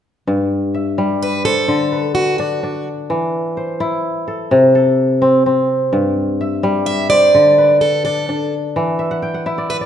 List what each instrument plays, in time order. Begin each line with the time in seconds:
0.27 kora G2
0.74 kora E5
0.98 kora G3
1.22 steel-string acoustic guitar B4
1.45 steel-string acoustic guitar A4, kora C5
1.68 kora D3
1.92 kora B4
2.15 steel-string acoustic guitar F#4
2.39 kora D4
2.63 kora D4
3.10 kora E3
3.57 kora C5
3.80 kora E4
4.28 kora A4
4.51 kora C3
4.75 kora A4
5.22 kora C4
5.46 kora C4
5.93 kora G2
6.41 kora E5
6.63 kora G3
6.86 steel-string acoustic guitar E5
7.10 kora C5, steel-string acoustic guitar D5
7.35 kora D3
7.58 kora B4
7.81 steel-string acoustic guitar A4
8.05 kora D4, steel-string acoustic guitar A4
8.29 kora D4
8.76 kora E3
8.99 kora E5
9.11 kora F#5
9.22 kora G5
9.34 kora F#5
9.46 kora E4 E5
9.58 kora D5
9.69 steel-string acoustic guitar B4, kora E5
9.81 kora D5